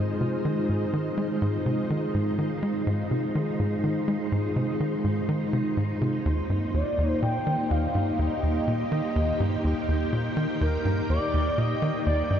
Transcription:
Already playing: analog synth bass G#2, string machine G#3 D#4 F4 C5 D#5, synth texture C5
0.21 analog synth bass C3
0.45 analog synth bass D#3
0.69 analog synth bass G#2
0.93 analog synth bass D#3
1.18 analog synth bass G#3
1.42 analog synth bass G#2
1.66 analog synth bass C3
1.90 analog synth bass D#3
2.14 analog synth bass G#2
2.39 analog synth bass D#3
2.63 analog synth bass G#3
2.87 analog synth bass G#2
3.11 analog synth bass C3
3.35 analog synth bass D#3
3.60 analog synth bass G#2
3.84 analog synth bass D#3
4.08 analog synth bass G#3
4.32 analog synth bass G#2
4.56 analog synth bass C3
4.80 analog synth bass D#3
5.04 analog synth bass G#2
5.29 analog synth bass D#3
5.53 analog synth bass C3
5.77 analog synth bass G#2
6.01 analog synth bass C3
6.26 analog synth bass D#2, string machine A#3
6.50 analog synth bass G2
6.74 analog synth bass D#2, analog synth lead D5
6.98 analog synth bass D#2
7.15 string machine G4
7.22 analog synth bass A#2, analog synth lead G5
7.47 analog synth bass D#3
7.71 analog synth bass D#2, analog synth lead F5
7.95 analog synth bass G2
8.19 analog synth bass D#2, analog synth lead D#5
8.27 string machine G5
8.43 analog synth bass D#2
8.68 analog synth bass A#2
8.92 analog synth bass D#3
9.16 analog synth bass D#2
9.40 analog synth bass G2
9.64 analog synth bass D#2
9.89 analog synth bass D#2
10.13 analog synth bass A#2
10.37 analog synth bass D#3
10.61 analog synth bass D#2, analog synth lead A#4
10.85 analog synth bass G2
11.10 analog synth bass D#2, analog synth lead D5
11.34 analog synth bass D#2
11.58 analog synth bass A#2, analog synth lead D#5
11.82 analog synth bass D#3
12.06 analog synth bass D#2, analog synth lead D5
12.31 analog synth bass G2

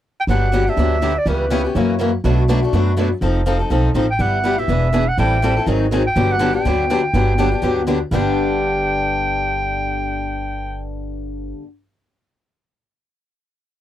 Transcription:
0.20 clarinet G5
0.27 upright bass G1, steel-string acoustic guitar D3 F#3 B3 D4 G4, clarinet F#5
0.53 steel-string acoustic guitar D3 F#3 B3 D4 G4
0.67 steel-string acoustic guitar B3 D4 G4, clarinet E5
0.77 upright bass D2, steel-string acoustic guitar D3 F#3 B3 D4 G4
1.02 steel-string acoustic guitar D3 F#3 B3 D4 G4
1.18 clarinet D5
1.26 upright bass C#2, steel-string acoustic guitar C#3 E3 G3 B3 C#4 E4 G4 B4, clarinet B4
1.50 steel-string acoustic guitar C#3 E3 G3 B3 C#4 E4 G4 B4
1.64 steel-string acoustic guitar B3 C#4 G4
1.75 upright bass F#2, steel-string acoustic guitar C#3 E3 F#3 A#3 C#4 E4 F#4 A#4
1.99 steel-string acoustic guitar C#3 E3 F#3 A#3 C#4 E4 F#4 A#4
2.24 upright bass B1, steel-string acoustic guitar B2 F#3 A3 D4 F#4 B4
2.49 steel-string acoustic guitar B2 F#3 A3 D4 F#4 B4
2.63 steel-string acoustic guitar A3 D4 F#4
2.73 upright bass F#2, steel-string acoustic guitar B2 F#3 A3 D4 F#4 B4
2.97 steel-string acoustic guitar B2 F#3 A3 D4 F#4 B4
3.21 upright bass F1, steel-string acoustic guitar F3 C4 D#4 A4
3.46 steel-string acoustic guitar F3 C4 D#4 A4
3.59 steel-string acoustic guitar C4 D#4 A4
3.70 upright bass B1, steel-string acoustic guitar F3 C4 D#4 A4
3.95 upright bass A1, steel-string acoustic guitar F3 C4 D#4 A4
4.11 clarinet G5
4.19 upright bass G1, steel-string acoustic guitar G3 B3 E4 G4, clarinet F#5
4.45 steel-string acoustic guitar G3 B3 E4 G4
4.58 steel-string acoustic guitar B3 E4 G4, clarinet E5
4.68 upright bass E1, steel-string acoustic guitar E3 B3 D4 G#4 B4
4.93 steel-string acoustic guitar E3 B3 D4 G#4 B4
5.09 clarinet F#5
5.18 upright bass A1, steel-string acoustic guitar E3 G3 C4 E4 A4, clarinet G5
5.42 steel-string acoustic guitar E3 G3 C4 E4 A4
5.57 steel-string acoustic guitar C4 E4 A4
5.66 upright bass G#1, steel-string acoustic guitar D#3 F#3 C4 D#4 G#4
5.92 steel-string acoustic guitar D#3 F#3 C4 D#4 G#4
6.07 clarinet G5
6.16 upright bass G1, steel-string acoustic guitar D3 F#3 B3 D4 G4
6.32 clarinet F#5
6.39 steel-string acoustic guitar D3 F#3 B3 D4 G4
6.53 steel-string acoustic guitar B3 D4 G4, clarinet G5
6.65 upright bass D2, steel-string acoustic guitar D3 F#3 B3 D4 G4
6.90 steel-string acoustic guitar D3 F#3 B3 D4 G4
7.14 upright bass G1, steel-string acoustic guitar D3 F#3 B3 D4 G4
7.38 steel-string acoustic guitar D3 F#3 B3 D4 G4
7.52 steel-string acoustic guitar B3 D4 G4
7.62 upright bass D2, steel-string acoustic guitar D3 F#3 B3 D4 G4
7.87 steel-string acoustic guitar D3 F#3 B3 D4 G4
8.11 upright bass G1, steel-string acoustic guitar G2 D3 B3 D4 G4, clarinet G5

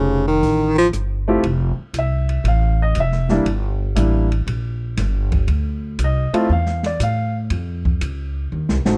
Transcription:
Already playing: upright bass F1, baritone saxophone C#3, grand piano A3 C4 D#4 F4 G4
0.28 baritone saxophone D#3
0.42 upright bass A1, kick, open hi-hat
0.78 baritone saxophone F3
0.92 upright bass G1, cross-stick, closed hi-hat
1.28 grand piano A3 C4 E4 F4 G4
1.43 upright bass F1, kick, ride
1.78 muted upright bass stroke
1.94 upright bass C2, kick, hi-hat pedal, ride
1.99 grand piano E5
2.29 ride
2.44 upright bass A1, kick, ride
2.48 grand piano F5
2.82 grand piano D#5
2.95 upright bass F1, kick, hi-hat pedal, ride
3.00 grand piano E5
3.12 snare
3.29 grand piano G3 A#3 D4 E4, snare
3.45 upright bass G1, kick, ride
3.95 upright bass A1, grand piano G3 A#3 D4 E4, kick, hi-hat pedal, ride
4.32 ride
4.47 upright bass A#1, kick, ride
4.97 upright bass G1, kick, snare, hi-hat pedal, ride
5.32 kick, ride
5.48 upright bass D2, kick, ride
5.99 upright bass C2, kick, hi-hat pedal, ride
6.04 grand piano D#5
6.33 grand piano A3 C4 E4 F4, muted upright bass stroke, ride
6.49 upright bass E2, grand piano F5, kick
6.66 snare
6.83 grand piano D5, snare, ride
7.00 upright bass A2, grand piano F5, kick, hi-hat pedal, ride
7.50 upright bass F2, kick, ride
7.85 kick
8.01 upright bass C#2, kick, hi-hat pedal, ride
8.52 upright bass D#2
8.69 upright bass C2, snare
8.85 upright bass A1, grand piano A3 C4 D#4 F#4, snare

